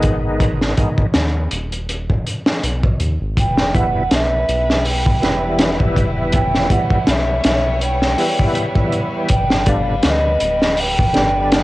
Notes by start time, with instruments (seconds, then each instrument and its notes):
Already playing: analog synth bass G#1, tonewheel organ D#3 G#3 B3 D#4
0.03 kick, closed hi-hat
0.40 kick, closed hi-hat
0.62 snare
0.77 tonewheel organ D#3 G#3 B3 D#4, kick, closed hi-hat
0.98 kick
1.14 analog synth bass D#2, snare, closed hi-hat
1.51 analog synth bass D#1, closed hi-hat
1.72 closed hi-hat
1.89 closed hi-hat
2.10 kick
2.26 closed hi-hat
2.46 snare
2.63 analog synth bass B1, closed hi-hat
2.83 kick
3.00 analog synth bass D#2, closed hi-hat
3.21 analog synth bass G#1
3.37 analog synth bass E1, violin section G3 B3 E4 B4, flute G5, kick, closed hi-hat
3.57 snare
3.74 tonewheel organ E3 G3 B3 E4, flute F#5, kick, closed hi-hat
4.11 analog synth bass B1, flute E5, snare, closed hi-hat
4.49 analog synth bass B1, closed hi-hat
4.70 snare
4.85 flute G5, open hi-hat
5.06 kick
5.22 analog synth bass E1, tonewheel organ E3 G3 B3 E4, snare, closed hi-hat
5.59 snare, closed hi-hat
5.80 kick
5.96 kick, closed hi-hat
6.32 violin section C#5, flute G5, kick, closed hi-hat
6.54 snare
6.69 tonewheel organ E3 G3 B3 E4, flute F#5, kick, closed hi-hat
6.90 kick
7.07 analog synth bass B1, flute E5, snare, closed hi-hat
7.44 analog synth bass B1, snare, closed hi-hat
7.81 flute G5, closed hi-hat
8.02 snare
8.17 tonewheel organ E3 G3 B3 E4, open hi-hat
8.39 kick
8.55 closed hi-hat
8.76 kick
8.92 closed hi-hat
9.29 analog synth bass G1, violin section B4, flute G5, kick, closed hi-hat
9.50 snare
9.66 tonewheel organ D3 G3 B3 D4, flute F5, kick, closed hi-hat
10.03 analog synth bass D2, flute F5, snare, closed hi-hat
10.10 flute D#5
10.40 analog synth bass D1, closed hi-hat
10.62 snare
10.77 flute G5, open hi-hat
10.99 kick
11.13 analog synth bass G1, tonewheel organ D3 G3 B3 D4, snare, closed hi-hat
11.52 snare, closed hi-hat